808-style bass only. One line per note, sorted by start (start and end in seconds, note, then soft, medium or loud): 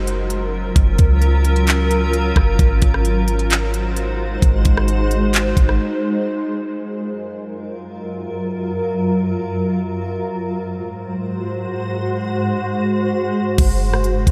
0.00 0.72 F#1 loud
0.76 0.98 F#1 loud
0.99 2.32 C#2 loud
2.36 2.58 F#1 loud
2.59 2.81 G#1 loud
2.82 4.38 G#1 loud
4.42 4.64 G#1 loud
4.65 5.53 G#1 loud
5.57 5.79 G#1 loud
13.58 14.24 F#1 loud
14.27 14.31 F#1 loud